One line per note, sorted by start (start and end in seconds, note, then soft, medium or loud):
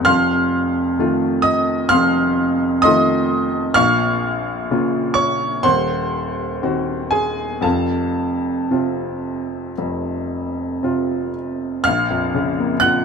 0.00 1.83 F1 medium
0.00 0.10 F#4 medium
0.00 0.10 G#5 medium
0.00 0.10 D#6 medium
0.00 0.10 F#6 loud
0.05 1.87 F2 medium
0.05 1.40 F5 medium
0.05 1.40 C6 medium
0.05 1.44 F6 loud
0.99 1.87 D#3 medium
0.99 1.87 A3 medium
0.99 1.88 F4 medium
1.42 1.87 D#5 medium
1.42 1.90 D#6 loud
1.89 3.73 F1 medium
1.89 3.73 F2 medium
1.89 2.80 F5 medium
1.89 2.80 C6 medium
1.89 2.83 F6 loud
2.82 3.73 D#3 medium
2.82 3.73 A3 medium
2.82 3.73 F4 medium
2.82 3.72 D#5 medium
2.82 3.72 C6 medium
2.82 3.76 D#6 loud
3.74 5.60 A#1 medium
3.74 5.60 A#2 medium
3.74 5.12 F5 medium
3.74 5.12 C#6 medium
3.74 5.15 F6 loud
4.71 5.61 C#3 medium
4.71 5.61 A#3 medium
4.71 5.61 F4 medium
5.14 5.60 C#5 medium
5.14 5.63 C#6 loud
5.63 7.61 D#1 medium
5.63 7.61 D#2 medium
5.63 7.08 C5 medium
5.63 7.08 F#5 medium
5.63 7.12 C6 loud
6.63 7.61 D#3 medium
6.63 7.61 C4 medium
6.63 7.61 F#4 medium
7.11 7.60 G#4 medium
7.11 7.63 G#5 loud
7.61 9.72 F1 medium
7.61 9.70 F2 medium
7.61 11.30 A4 medium
7.61 11.30 F5 medium
7.61 11.33 A5 medium
8.71 9.72 C3 soft
8.71 9.73 C4 medium
8.71 9.73 F4 medium
9.78 11.82 F1 medium
9.78 11.82 F2 medium
10.83 11.82 C3 soft
10.83 11.82 C4 soft
10.83 11.83 F4 medium
11.84 13.05 A#1 medium
11.84 12.78 F5 medium
11.84 12.81 F6 loud
12.10 12.49 F2 medium
12.34 12.73 C#3 medium
12.60 12.97 A#3 medium
12.80 13.05 F4 medium
12.80 13.05 F#5 medium
12.80 13.05 F#6 loud